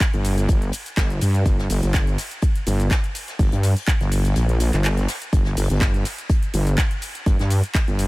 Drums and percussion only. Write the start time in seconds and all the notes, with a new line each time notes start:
0.00 kick, snare, clap, closed hi-hat, ride, shaker
0.13 closed hi-hat, shaker
0.25 closed hi-hat, open hi-hat, ride, shaker
0.38 closed hi-hat, shaker
0.48 kick, closed hi-hat, ride, shaker
0.62 closed hi-hat, shaker
0.72 closed hi-hat, open hi-hat, ride, shaker
0.86 closed hi-hat, shaker
0.97 kick, snare, clap, closed hi-hat, ride, shaker
1.10 closed hi-hat, shaker
1.21 closed hi-hat, open hi-hat, ride, shaker
1.35 closed hi-hat, shaker
1.45 kick, closed hi-hat, ride, shaker
1.59 snare, shaker
1.70 open hi-hat, ride, shaker
1.83 closed hi-hat, shaker
1.94 kick, snare, clap, closed hi-hat, ride, shaker
2.07 closed hi-hat, shaker
2.18 snare, closed hi-hat, open hi-hat, ride, shaker
2.31 closed hi-hat, shaker
2.41 kick, closed hi-hat, ride, shaker
2.56 closed hi-hat, shaker
2.67 closed hi-hat, open hi-hat, ride, shaker
2.80 closed hi-hat, shaker
2.91 kick, snare, clap, closed hi-hat, ride, shaker
3.04 closed hi-hat, shaker
3.15 closed hi-hat, open hi-hat, ride, shaker
3.28 snare, closed hi-hat, shaker
3.39 kick, open hi-hat, ride, shaker
3.52 closed hi-hat, shaker
3.63 snare, open hi-hat, ride, shaker
3.77 closed hi-hat, open hi-hat, shaker
3.88 kick, clap, ride, shaker
4.01 snare, closed hi-hat, shaker
4.12 open hi-hat, ride, shaker
4.25 closed hi-hat, shaker
4.36 closed hi-hat, ride, shaker
4.49 closed hi-hat, shaker
4.60 closed hi-hat, open hi-hat, ride, shaker
4.73 snare, clap, closed hi-hat, shaker
4.84 clap, open hi-hat, ride, shaker
4.97 closed hi-hat, shaker
5.08 snare, closed hi-hat, open hi-hat, ride, shaker
5.22 closed hi-hat, shaker
5.33 kick, closed hi-hat, ride, shaker
5.44 snare, shaker
5.57 open hi-hat, ride, shaker
5.70 closed hi-hat, shaker
5.81 kick, snare, clap, closed hi-hat, ride, shaker
5.94 closed hi-hat, shaker
6.05 snare, closed hi-hat, open hi-hat, ride, shaker
6.18 closed hi-hat, shaker
6.30 kick, closed hi-hat, ride, shaker
6.43 closed hi-hat, shaker
6.54 closed hi-hat, open hi-hat, ride, shaker
6.67 closed hi-hat, shaker
6.78 kick, snare, clap, closed hi-hat, ride, shaker
6.91 closed hi-hat, shaker
7.02 closed hi-hat, open hi-hat, ride, shaker
7.15 closed hi-hat, shaker
7.26 kick, closed hi-hat, ride, shaker
7.39 snare, closed hi-hat, shaker
7.50 closed hi-hat, open hi-hat, ride, shaker
7.64 closed hi-hat, shaker
7.75 kick, snare, clap, closed hi-hat, ride, shaker
7.88 closed hi-hat, shaker
7.98 closed hi-hat, open hi-hat, ride, shaker